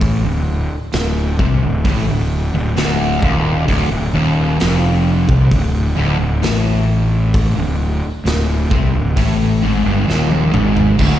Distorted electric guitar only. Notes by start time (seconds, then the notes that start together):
Already playing: A2
0.25 D2
0.94 D2
1.40 C3
1.63 D2
1.85 A2
2.08 D2
2.54 D2
2.76 D2
3.23 D#2
3.67 D2
3.91 D2
4.14 D#2
4.60 F2
5.28 C3
5.51 D2
5.96 D2
6.18 D2
6.42 A2
7.56 D2
8.25 D2
8.71 C3
8.94 D2
9.16 A2
9.62 G#2
9.85 G2
10.07 D#2
10.53 G#2
10.98 D2